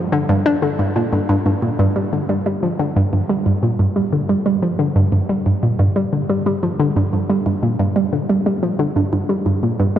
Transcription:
0.12 0.20 D3 loud
0.29 0.34 G2 loud
0.46 0.57 D4 loud
0.62 0.67 D3 medium
0.79 0.91 G2 medium
0.96 1.04 A#2 medium
1.13 1.17 G2 medium
1.29 1.34 G2 loud
1.46 1.51 G2 medium
1.62 1.70 A#2 medium
1.79 1.87 G2 loud
1.96 2.04 G3 medium
2.13 2.20 D3 medium
2.29 2.37 G3 medium
2.46 2.54 G3 medium
2.63 2.70 F3 medium
2.79 2.87 D3 medium
2.96 3.01 G2 loud
3.13 3.20 G2 medium
3.29 3.37 G3 medium
3.46 3.51 G2 medium
3.63 3.70 A#2 medium
3.79 3.87 G2 loud
3.96 4.04 G3 medium
4.12 4.20 D3 medium
4.29 4.37 G3 medium
4.46 4.54 G3 medium
4.63 4.70 F3 medium
4.79 4.87 D3 loud
4.96 5.01 G2 loud
5.12 5.20 G2 medium
5.29 5.37 G3 medium
5.46 5.51 G2 medium
5.63 5.70 A#2 medium
5.79 5.87 G2 loud
5.96 6.04 G3 medium
6.13 6.20 D3 medium
6.29 6.37 G3 medium
6.46 6.54 G3 medium
6.63 6.70 F3 medium
6.80 6.87 D3 loud
6.96 7.01 G2 loud
7.13 7.21 G2 medium
7.30 7.37 G3 medium
7.46 7.51 G2 medium
7.63 7.70 A#2 medium
7.80 7.87 G2 loud
7.96 8.04 G3 medium
8.13 8.20 D3 medium
8.29 8.37 G3 medium
8.46 8.54 G3 medium
8.63 8.70 F3 medium
8.79 8.87 D3 loud
8.96 9.01 G2 loud
9.13 9.20 G2 medium
9.29 9.37 G3 medium
9.46 9.51 G2 medium
9.63 9.70 A#2 medium
9.80 9.87 G2 loud

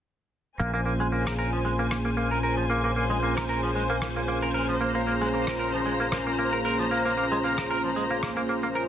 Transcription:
0.59 8.88 A#1 medium
0.59 4.77 A#3 medium
0.59 0.70 A#3 medium
0.59 4.77 C#4 medium
0.59 4.78 F4 medium
0.59 4.78 G#4 medium
0.59 8.88 C5 medium
0.59 4.78 C5 medium
0.59 4.77 G#5 medium
0.74 0.80 A#3 medium
0.86 0.93 A#3 medium
1.00 1.06 G#3 medium
1.12 1.23 A#3 medium
1.26 1.32 A#4 medium
1.26 cross-stick medium
1.39 1.49 A#4 medium
1.53 1.59 F3 medium
1.65 1.72 G#3 medium
1.79 1.85 A#3 medium
1.91 1.95 A#3 medium
1.91 cross-stick medium
2.05 2.09 A#3 medium
2.17 2.28 A#3 medium
2.31 2.38 A#4 medium
2.43 2.54 A#4 medium
2.57 2.64 F3 medium
2.70 2.81 A#3 medium
2.84 2.90 A#3 medium
2.96 3.03 A#3 medium
3.10 3.16 G#3 medium
3.23 3.33 A#3 medium
3.37 3.43 A#4 medium
3.37 cross-stick medium
3.49 3.60 A#4 medium
3.63 3.69 F3 medium
3.75 3.82 G#3 medium
3.90 3.96 A#3 medium
4.02 4.06 A#3 medium
4.02 cross-stick medium
4.16 4.20 A#3 medium
4.28 4.39 A#3 medium
4.42 4.48 A#4 medium
4.54 4.65 A#4 medium
4.69 4.75 F3 medium
4.79 8.88 A#3 medium
4.79 4.91 A#3 medium
4.79 8.88 C#4 medium
4.79 8.88 F4 medium
4.79 8.88 G#4 medium
4.79 8.88 C5 medium
4.79 8.88 A#5 medium
4.95 5.01 A#3 medium
5.07 5.14 A#3 medium
5.21 5.27 G#3 medium
5.34 5.44 A#3 medium
5.47 5.54 A#4 medium
5.47 cross-stick medium
5.59 5.70 A#4 medium
5.74 5.80 F3 medium
5.86 5.93 G#3 medium
6.00 6.06 A#3 medium
6.12 6.17 A#3 medium
6.12 cross-stick medium
6.27 6.30 A#3 medium
6.39 6.49 A#3 medium
6.53 6.59 A#4 medium
6.65 6.76 A#4 medium
6.79 6.85 F3 medium
6.91 7.02 A#3 medium
7.05 7.11 A#3 medium
7.17 7.25 A#3 medium
7.32 7.38 G#3 medium
7.44 7.55 A#3 medium
7.58 7.64 A#4 medium
7.58 cross-stick medium
7.71 7.81 A#4 medium
7.84 7.90 F3 medium
7.96 8.03 G#3 medium
8.11 8.17 A#3 medium
8.23 8.30 A#3 medium
8.23 cross-stick medium
8.37 8.40 A#3 medium
8.49 8.53 A#3 medium
8.63 8.67 A#3 medium
8.75 8.82 A#4 medium

